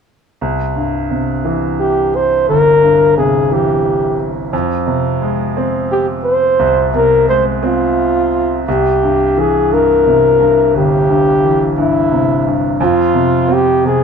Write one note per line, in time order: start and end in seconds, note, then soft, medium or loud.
0.41 2.44 C2 soft
0.76 2.10 G2 soft
1.10 2.44 C3 soft
1.44 2.78 E3 soft
1.80 2.17 G4 medium
2.16 2.48 C5 medium
2.49 4.49 G1 soft
2.49 3.13 A#4 medium
2.83 4.15 G2 soft
3.17 4.49 C3 soft
3.17 3.55 G#4 medium
3.51 4.50 E3 soft
3.51 4.29 G4 medium
4.53 6.55 F2 medium
4.87 6.20 C3 soft
5.22 6.55 G#3 soft
5.57 6.90 C4 soft
5.92 6.07 G4 medium
6.24 6.89 C5 medium
6.59 8.63 C2 medium
6.94 8.28 C3 soft
6.94 7.27 A#4 medium
7.28 8.63 G#3 soft
7.28 7.45 C5 medium
7.63 8.64 C4 soft
7.63 8.65 F4 medium
8.68 10.71 C2 medium
8.68 9.41 G4 medium
9.03 9.70 G2 soft
9.37 10.70 E3 soft
9.37 9.75 G#4 medium
9.71 10.39 G2 soft
9.71 10.76 A#4 medium
10.07 11.39 C3 soft
10.40 11.08 G2 soft
10.75 12.76 G1 medium
10.75 11.75 G4 medium
11.10 11.76 G2 soft
11.44 12.76 E3 soft
11.78 12.46 G2 soft
11.78 12.51 E4 medium
12.12 12.78 C3 soft
12.47 12.80 G2 soft
12.80 14.04 F2 medium
12.80 13.55 F4 medium
13.14 13.83 C3 soft
13.48 14.04 C4 soft
13.53 13.85 G4 medium
13.85 14.04 C3 soft
13.85 14.04 G#4 medium